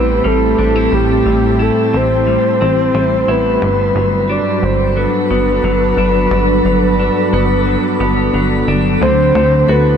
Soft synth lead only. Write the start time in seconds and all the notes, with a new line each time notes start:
Already playing: B4
0.27 A4
0.94 G4
1.62 A4
1.96 C5
3.31 B4
4.31 D5
4.64 C5
4.98 B4
9.02 C5
9.71 B4